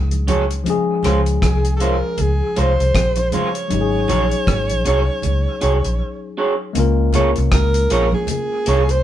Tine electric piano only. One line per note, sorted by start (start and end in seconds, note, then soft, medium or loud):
0.00 0.61 F#3 medium
0.00 0.62 C#4 medium
0.00 0.63 D#4 medium
0.00 0.64 G#4 medium
0.64 3.66 F3 medium
0.64 3.67 G#3 medium
0.64 3.68 C#4 medium
0.70 3.69 G#4 medium
3.68 6.70 F#3 medium
3.68 6.71 C#4 medium
3.68 6.72 D#4 medium
3.74 3.80 G4 medium
3.81 6.77 G#4 medium
6.73 9.03 G#3 medium
6.73 9.03 A#3 medium
6.73 9.03 C#4 medium
6.78 9.03 F4 medium
6.78 9.03 A#4 medium